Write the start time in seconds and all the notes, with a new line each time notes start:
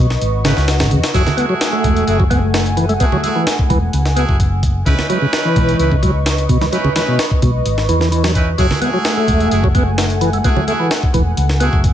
Already playing: B4 D#5 C#6
0.00 B1
0.10 snare
0.21 G#1, closed hi-hat, swell
0.44 C#3 C#4 D#4 E4 B4, snare, closed hi-hat
0.57 C#2, snare
0.68 snare, closed hi-hat
0.80 G#1 C#3, snare, closed hi-hat
0.91 E2 C#3, closed hi-hat
1.04 snare, closed hi-hat
1.14 F#1 F#3 A3 E4 F#4 G#4 F#5 G#5, kick, closed hi-hat
1.27 snare, low conga
1.37 A3 B3 E4 F#4 G#4, closed hi-hat, high conga
1.49 F#3
1.61 snare, closed hi-hat
1.73 A3
1.84 E1, kick, closed hi-hat, high conga
1.96 closed hi-hat
2.07 F#1 A3 E4 F#4 G#4, closed hi-hat
2.19 F#3, kick
2.30 B3, kick, closed hi-hat, high conga
2.54 snare, closed hi-hat
2.66 closed hi-hat
2.77 E3, closed hi-hat
2.89 A3, closed hi-hat, high conga
3.00 A3 B3 E4 F#4 G#4, kick, closed hi-hat
3.12 F#3, low conga
3.23 A3 E4 F#4 G#4, closed hi-hat, high conga
3.36 E3
3.47 snare, closed hi-hat
3.59 kick
3.70 E1 E3, kick, closed hi-hat, high conga
3.93 C#2, closed hi-hat
4.06 snare
4.16 A3 B3 E4 F#4 G#4, closed hi-hat
4.29 F#1, kick
4.40 kick, closed hi-hat
4.63 kick, closed hi-hat
4.86 C#2 C#3 C#4 D#4 E4 B4 D#5 C#6, kick, closed hi-hat
4.99 snare, low conga
5.09 F#3 C#4 D#4 E4 B4, closed hi-hat, high conga
5.22 C#3
5.33 snare, closed hi-hat
5.45 E3
5.56 B1, kick, closed hi-hat, high conga
5.69 closed hi-hat
5.79 C#2 C#4 D#4 E4 B4, closed hi-hat
5.91 C#3, kick
6.03 F#3, kick, closed hi-hat, high conga
6.26 snare, closed hi-hat
6.38 closed hi-hat
6.49 B2, kick, closed hi-hat
6.61 E3, snare, high conga
6.72 F#3 C#4 D#4 E4 B4, closed hi-hat
6.84 C#3, low conga
6.96 E3 C#4 D#4 E4 B4, snare, closed hi-hat, high conga
7.08 B2
7.19 snare, closed hi-hat
7.31 kick
7.42 B1 B2, kick, closed hi-hat, high conga
7.66 G#1, closed hi-hat
7.78 snare
7.89 E2 E3, closed hi-hat
8.01 E3, snare
8.12 E3, closed hi-hat
8.24 F#3, snare
8.35 C#4 D#4 E4 B4, kick, closed hi-hat
8.58 F#1 F#3 A3 E4 F#4 G#4 F#5 G#5, kick, closed hi-hat
8.71 snare, low conga
8.81 A3 B3 E4 F#4 G#4, closed hi-hat, high conga
8.94 F#3
9.05 snare, closed hi-hat
9.17 A3
9.28 E1, kick, closed hi-hat, high conga
9.40 closed hi-hat
9.51 F#1 A3 E4 F#4 G#4, closed hi-hat
9.64 F#3, kick
9.75 B3, kick, closed hi-hat, high conga
9.98 snare, closed hi-hat
10.10 closed hi-hat
10.21 E3, closed hi-hat
10.33 A3, closed hi-hat, high conga
10.44 A3 B3 E4 F#4 G#4, kick, closed hi-hat
10.56 F#3, low conga
10.67 A3 E4 F#4 G#4, closed hi-hat, high conga
10.80 E3
10.91 snare, closed hi-hat
11.03 kick
11.14 E1 E3, kick, closed hi-hat, high conga
11.37 C#2, closed hi-hat
11.49 snare
11.60 A3 B3 E4 F#4 G#4, closed hi-hat
11.73 F#1, kick
11.84 kick, closed hi-hat